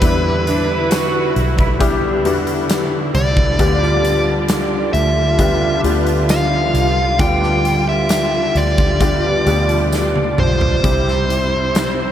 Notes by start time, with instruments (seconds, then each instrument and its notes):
Already playing: string section G3 E4, lead electric guitar B4
0.01 fingered electric bass E2, string section D3, grand piano E3 G3 B3 D4 E4 B4, kick, closed hi-hat
0.46 cello section D4, closed hi-hat
0.69 cello section E4
0.91 cello section F#4, snare, closed hi-hat, tambourine
1.36 fingered electric bass B1, closed hi-hat
1.58 cello section E4, kick, closed hi-hat
1.79 grand piano G3 B3 D4 E4 G4, cello section D4, kick, closed hi-hat
2.25 fingered electric bass E2, grand piano G3 B3 D4 E4 F#4, closed hi-hat
2.47 closed hi-hat
2.70 snare, closed hi-hat, tambourine
3.15 fingered electric bass C2, lead electric guitar D5, closed hi-hat
3.37 kick
3.58 fingered electric bass D2, grand piano D3 G3 B3 D4 F4 G4, string section F4, kick, closed hi-hat
3.83 snare
4.05 closed hi-hat
4.48 snare, closed hi-hat, tambourine
4.93 fingered electric bass D2, lead electric guitar E5, closed hi-hat
5.38 grand piano G3 B3 D4 F4 G4, kick, closed hi-hat
5.84 fingered electric bass D2, grand piano G3 B3 D4 F4 G4, closed hi-hat
6.07 closed hi-hat
6.29 lead electric guitar F5, snare, closed hi-hat, tambourine
6.74 fingered electric bass C2, closed hi-hat
7.19 fingered electric bass D2, grand piano D3 G3 B3 D4 F4 G4, lead electric guitar G5, kick, closed hi-hat
7.43 snare
7.65 closed hi-hat
7.89 lead electric guitar E5
8.09 snare, closed hi-hat, tambourine
8.55 fingered electric bass D2, lead electric guitar D5, closed hi-hat
8.78 kick, closed hi-hat
9.00 grand piano G3 B3 D4 F4 G4, kick, closed hi-hat
9.45 fingered electric bass D2, grand piano B2 G3 D4 F4 G4, closed hi-hat
9.69 closed hi-hat
9.92 snare, tambourine
10.16 high tom
10.38 fingered electric bass B1, lead electric guitar C5, mid tom
10.61 floor tom
10.83 fingered electric bass C2, grand piano C3 G3 C4 E4 G4, string section C3 E4, kick, closed hi-hat
11.08 snare
11.30 closed hi-hat
11.75 snare, closed hi-hat, tambourine